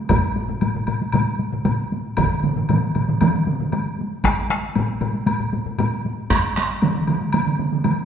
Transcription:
0.09 taiko loud
0.09 taiko low-mid loud
0.09 taiko high medium
0.09 high woodblock medium
0.24 taiko high soft
0.36 taiko high soft
0.48 taiko low-mid medium
0.48 taiko high soft
0.61 taiko low-mid medium
0.61 taiko high medium
0.61 high woodblock soft
0.75 taiko low-mid medium
0.75 taiko high soft
0.87 taiko low-mid medium
0.87 taiko high medium
0.87 high woodblock soft
1.01 taiko high soft
1.12 taiko low-mid medium
1.12 taiko high medium
1.12 high woodblock soft
1.27 taiko high soft
1.39 taiko high medium
1.52 taiko low-mid medium
1.52 taiko high soft
1.65 taiko low-mid medium
1.65 taiko high medium
1.65 high woodblock soft
1.79 taiko high soft
1.92 taiko high soft
2.05 taiko high soft
2.17 taiko medium
2.17 taiko low-mid medium
2.17 taiko mid medium
2.17 taiko high medium
2.17 high woodblock medium
2.43 taiko low-mid medium
2.43 taiko mid medium
2.43 taiko high soft
2.56 taiko low-mid medium
2.56 taiko mid medium
2.56 taiko high soft
2.69 taiko low-mid medium
2.69 taiko mid medium
2.69 taiko high medium
2.69 high woodblock soft
2.83 taiko high soft
2.95 taiko low-mid medium
2.95 taiko mid medium
2.95 taiko high soft
2.95 high woodblock soft
3.09 taiko low-mid medium
3.09 taiko mid medium
3.21 taiko low-mid medium
3.21 taiko mid loud
3.21 taiko high medium
3.21 high woodblock soft
3.34 taiko high soft
3.47 taiko low-mid medium
3.47 taiko mid medium
3.47 taiko high soft
3.60 taiko low-mid medium
3.60 taiko mid medium
3.60 taiko high soft
3.72 taiko high medium
3.72 high woodblock soft
3.85 taiko high soft
3.99 taiko high soft
4.11 taiko high soft
4.24 taiko rim medium
4.24 taiko medium
4.24 taiko high medium
4.24 high woodblock soft
4.37 taiko high soft
4.50 taiko rim medium
4.50 taiko high soft
4.63 taiko high soft
4.75 taiko low-mid medium
4.75 taiko high medium
4.75 high woodblock soft
4.88 taiko high soft
5.01 taiko low-mid medium
5.01 taiko high medium
5.01 high woodblock soft
5.14 taiko high soft
5.27 taiko low-mid medium
5.27 taiko high medium
5.27 high woodblock soft
5.40 taiko low-mid medium
5.40 taiko high soft
5.53 taiko low-mid medium
5.53 taiko high soft
5.66 taiko low-mid medium
5.66 taiko high soft
5.78 taiko low-mid loud
5.78 taiko high medium
5.78 high woodblock soft
5.92 taiko high soft
6.05 taiko high medium
6.19 taiko high soft
6.30 taiko rim medium
6.30 taiko medium
6.30 taiko high medium
6.30 high woodblock medium
6.44 taiko high soft
6.57 taiko rim medium
6.57 taiko high soft
6.70 taiko high soft
6.82 taiko mid loud
6.82 taiko high medium
6.82 high woodblock soft
6.96 taiko high soft
7.07 taiko mid medium
7.07 taiko high medium
7.07 high woodblock soft
7.21 taiko high soft
7.33 taiko mid medium
7.33 taiko high medium
7.33 high woodblock medium
7.46 taiko mid medium
7.46 taiko high soft
7.59 taiko mid medium
7.59 taiko high medium
7.73 taiko mid medium
7.73 taiko high soft
7.84 taiko mid medium
7.84 taiko high medium
7.84 high woodblock soft
7.98 taiko high soft

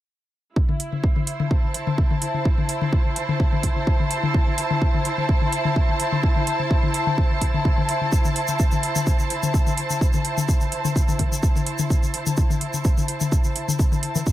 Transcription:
0.56 14.32 E4 medium
0.56 kick loud
0.69 high tom medium
0.80 open hi-hat medium
0.92 14.32 C5 medium
0.92 high tom soft
1.04 kick loud
1.16 high tom medium
1.27 open hi-hat medium
1.40 high tom medium
1.50 14.32 A5 medium
1.50 kick loud
1.63 high tom soft
1.74 open hi-hat medium
1.87 high tom medium
1.98 kick loud
2.11 high tom medium
2.22 open hi-hat medium
2.34 high tom soft
2.45 kick loud
2.58 high tom medium
2.69 open hi-hat medium
2.81 high tom medium
2.93 kick loud
3.05 high tom soft
3.16 open hi-hat medium
3.29 high tom medium
3.40 kick loud
3.52 high tom medium
3.63 kick medium
3.63 open hi-hat medium
3.76 high tom soft
3.87 kick loud
4.00 high tom medium
4.11 open hi-hat medium
4.23 high tom medium
4.34 kick loud
4.47 high tom soft
4.58 open hi-hat medium
4.70 high tom medium
4.82 kick loud
4.94 high tom medium
5.05 open hi-hat medium
5.18 high tom soft
5.29 kick loud
5.41 high tom medium
5.52 open hi-hat medium
5.65 high tom medium
5.76 kick loud
5.89 high tom soft
6.00 open hi-hat medium
6.12 high tom medium
6.23 kick loud
6.36 high tom medium
6.47 open hi-hat medium
6.59 high tom soft
6.71 kick loud
6.83 high tom medium
6.94 open hi-hat medium
7.07 high tom medium
7.18 kick loud
7.30 high tom soft
7.41 kick medium
7.41 open hi-hat medium
7.54 high tom medium
7.65 kick loud
7.77 high tom medium
7.89 open hi-hat medium
8.01 high tom soft
8.12 kick loud
8.12 shaker medium
8.25 high tom medium
8.25 shaker soft
8.36 open hi-hat medium
8.48 high tom soft
8.48 shaker medium
8.59 kick loud
8.59 shaker medium
8.71 high tom medium
8.71 shaker soft
8.83 open hi-hat medium
8.96 high tom medium
8.96 shaker medium
9.07 kick loud
9.07 shaker medium
9.19 high tom soft
9.19 shaker soft
9.30 open hi-hat medium
9.43 high tom medium
9.43 shaker medium
9.54 kick loud
9.54 shaker medium
9.66 high tom medium
9.66 shaker soft
9.78 open hi-hat medium
9.90 high tom soft
9.90 shaker medium
10.01 kick loud
10.01 shaker medium
10.13 high tom medium
10.13 shaker soft
10.25 open hi-hat medium
10.37 high tom medium
10.37 shaker medium
10.48 kick loud
10.48 shaker medium
10.61 high tom soft
10.61 shaker soft
10.72 open hi-hat medium
10.85 high tom medium
10.85 shaker medium
10.96 kick loud
10.96 shaker medium
11.08 high tom medium
11.08 shaker soft
11.19 kick medium
11.19 open hi-hat medium
11.19 low conga medium
11.32 high tom soft
11.32 shaker medium
11.43 kick loud
11.43 shaker medium
11.55 high tom medium
11.55 shaker soft
11.66 open hi-hat medium
11.79 high tom medium
11.79 shaker medium
11.90 kick loud
11.90 shaker medium
12.03 high tom soft
12.03 shaker soft
12.14 open hi-hat medium
12.26 high tom medium
12.26 shaker medium
12.37 kick loud
12.37 shaker medium
12.50 high tom medium
12.50 shaker soft
12.61 open hi-hat medium
12.74 high tom soft
12.74 shaker medium
12.84 kick loud
12.84 shaker medium
12.97 high tom medium
12.97 shaker soft
13.08 open hi-hat medium
13.21 high tom medium
13.21 shaker medium
13.32 kick loud
13.32 shaker medium
13.44 high tom soft
13.44 shaker soft
13.56 open hi-hat medium
13.68 high tom medium
13.68 shaker medium
13.79 kick loud
13.79 shaker medium
13.92 high tom medium
13.92 shaker soft
14.03 open hi-hat medium
14.15 high tom soft
14.15 low conga medium
14.15 shaker medium
14.27 kick loud
14.27 shaker medium

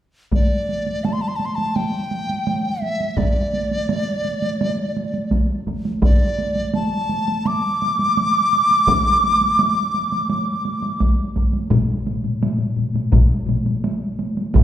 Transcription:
0.32 1.06 D5 medium
0.32 taiko medium
0.32 taiko high soft
0.69 taiko high soft
0.86 taiko high soft
1.04 1.14 A5 medium
1.04 taiko high medium
1.13 1.23 C6 medium
1.21 1.29 A5 medium
1.28 1.37 C6 soft
1.36 1.47 A5 medium
1.36 taiko high soft
1.45 1.57 C6 soft
1.55 1.77 A5 medium
1.55 taiko high soft
1.76 2.83 G5 medium
1.76 taiko high medium
2.11 taiko high soft
2.29 taiko high soft
2.47 taiko high soft
2.82 3.19 E5 medium
2.82 taiko high soft
3.00 taiko high soft
3.17 5.31 D5 medium
3.17 taiko medium
3.17 taiko high soft
3.53 taiko high soft
3.71 taiko high soft
3.89 taiko high medium
4.25 taiko high soft
4.42 taiko high soft
4.61 taiko high medium
4.97 taiko high soft
5.14 taiko high soft
5.31 taiko medium
5.31 taiko high medium
5.67 taiko medium
5.67 taiko high soft
5.85 taiko high soft
6.02 6.71 D5 medium
6.02 taiko medium
6.02 taiko high medium
6.38 taiko high soft
6.56 taiko high soft
6.74 7.48 A5 medium
6.74 taiko high medium
7.09 taiko high soft
7.28 taiko high soft
7.45 11.01 D6 medium
7.45 taiko high medium
7.82 taiko high soft
7.99 taiko high soft
8.17 taiko high medium
8.53 taiko high soft
8.71 taiko high soft
8.87 taiko medium
8.87 taiko high medium
9.24 taiko high soft
9.41 taiko high soft
9.59 taiko high medium
9.94 taiko high soft
10.12 taiko high soft
10.29 taiko high medium
10.65 taiko high soft
10.82 taiko high soft
11.00 taiko medium
11.00 taiko high medium
11.36 taiko medium
11.36 taiko high soft
11.53 taiko high soft
11.71 taiko medium
11.71 taiko low-mid medium
11.71 taiko high medium
12.06 taiko low-mid medium
12.06 taiko high soft
12.24 taiko low-mid medium
12.24 taiko high soft
12.41 taiko low-mid medium
12.41 taiko high medium
12.59 taiko low-mid medium
12.76 taiko low-mid medium
12.76 taiko high soft
12.94 taiko low-mid medium
12.94 taiko high soft
13.12 taiko medium
13.12 taiko low-mid medium
13.12 taiko high medium
13.47 taiko low-mid medium
13.47 taiko high soft
13.65 taiko low-mid medium
13.65 taiko high soft
13.84 taiko high medium
14.19 taiko high soft
14.37 taiko high soft
14.54 taiko medium
14.54 taiko mid medium
14.54 taiko high medium

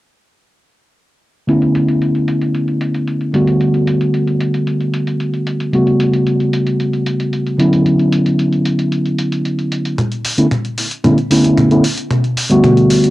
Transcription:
1.47 3.31 D3 medium
1.47 3.31 A3 medium
1.47 3.31 B3 medium
1.47 3.32 C#4 medium
1.47 3.32 E4 medium
1.47 closed hi-hat soft
1.62 closed hi-hat soft
1.75 closed hi-hat medium
1.88 closed hi-hat soft
2.02 closed hi-hat soft
2.15 closed hi-hat soft
2.28 closed hi-hat medium
2.41 closed hi-hat soft
2.54 closed hi-hat soft
2.68 closed hi-hat soft
2.81 closed hi-hat medium
2.94 closed hi-hat soft
3.08 closed hi-hat soft
3.21 closed hi-hat soft
3.33 5.70 D3 medium
3.33 5.70 G3 medium
3.33 5.70 A3 medium
3.33 5.70 B3 medium
3.33 5.71 F#4 medium
3.33 closed hi-hat medium
3.47 closed hi-hat soft
3.61 closed hi-hat soft
3.74 closed hi-hat soft
3.87 closed hi-hat medium
4.01 closed hi-hat soft
4.14 closed hi-hat soft
4.27 closed hi-hat soft
4.40 closed hi-hat medium
4.54 closed hi-hat soft
4.67 closed hi-hat soft
4.81 closed hi-hat soft
4.94 closed hi-hat medium
5.07 closed hi-hat soft
5.20 closed hi-hat soft
5.34 closed hi-hat soft
5.47 closed hi-hat medium
5.60 closed hi-hat soft
5.73 7.56 C#3 medium
5.73 7.56 G3 medium
5.73 7.56 A3 medium
5.73 7.57 B3 medium
5.73 7.57 F#4 medium
5.73 closed hi-hat soft
5.87 closed hi-hat soft
6.00 closed hi-hat medium
6.13 closed hi-hat soft
6.27 closed hi-hat soft
6.40 closed hi-hat soft
6.53 closed hi-hat medium
6.67 closed hi-hat soft
6.80 closed hi-hat soft
6.93 closed hi-hat soft
7.06 closed hi-hat medium
7.20 closed hi-hat soft
7.33 closed hi-hat soft
7.47 closed hi-hat soft
7.58 9.95 D3 medium
7.58 9.95 F#3 medium
7.58 9.95 B3 medium
7.58 9.95 C#4 medium
7.58 9.96 E4 medium
7.58 closed hi-hat medium
7.73 closed hi-hat soft
7.86 closed hi-hat soft
7.99 closed hi-hat soft
8.12 closed hi-hat medium
8.26 closed hi-hat soft
8.39 closed hi-hat soft
8.53 closed hi-hat soft
8.65 closed hi-hat medium
8.79 closed hi-hat soft
8.92 closed hi-hat soft
9.06 closed hi-hat soft
9.18 closed hi-hat medium
9.32 closed hi-hat soft
9.45 closed hi-hat soft
9.59 closed hi-hat soft
9.72 closed hi-hat medium
9.85 closed hi-hat soft
9.98 closed hi-hat medium
9.98 mid tom soft
10.12 closed hi-hat soft
10.25 open hi-hat loud
10.38 10.45 D3 medium
10.38 10.45 A3 medium
10.38 10.46 B3 medium
10.38 10.46 C#4 medium
10.38 10.46 E4 medium
10.38 closed hi-hat soft
10.51 closed hi-hat soft
10.51 mid tom soft
10.65 closed hi-hat soft
10.78 open hi-hat loud
10.91 closed hi-hat medium
11.04 11.16 D3 medium
11.04 11.16 A3 medium
11.04 11.16 B3 medium
11.04 11.17 C#4 medium
11.04 11.17 E4 medium
11.04 closed hi-hat medium
11.04 mid tom soft
11.18 closed hi-hat soft
11.31 11.68 D3 medium
11.31 11.68 A3 medium
11.31 11.68 B3 medium
11.31 11.68 C#4 medium
11.31 11.68 E4 medium
11.31 open hi-hat loud
11.44 closed hi-hat soft
11.58 closed hi-hat soft
11.58 mid tom medium
11.71 11.82 D3 medium
11.71 11.83 A3 medium
11.71 11.83 B3 medium
11.71 11.83 C#4 medium
11.71 11.83 E4 medium
11.71 closed hi-hat soft
11.84 open hi-hat loud
11.98 closed hi-hat medium
12.11 closed hi-hat soft
12.11 mid tom medium
12.24 closed hi-hat soft
12.37 open hi-hat loud
12.50 13.10 D3 medium
12.50 13.10 G3 medium
12.50 13.10 A3 medium
12.50 13.10 B3 medium
12.50 13.10 F#4 loud
12.50 closed hi-hat medium
12.64 closed hi-hat soft
12.64 mid tom medium
12.77 closed hi-hat soft
12.90 open hi-hat loud
13.04 closed hi-hat medium

